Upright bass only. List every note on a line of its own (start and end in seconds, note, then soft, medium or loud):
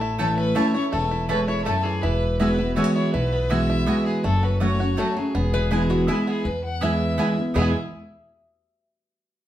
0.00 0.55 A1 medium
0.93 1.65 E1 medium
2.04 2.76 E1 loud
3.14 3.86 B1 medium
4.24 4.97 F#1 medium
5.35 6.07 E1 medium
6.45 7.17 E2 medium
7.55 7.73 E2 medium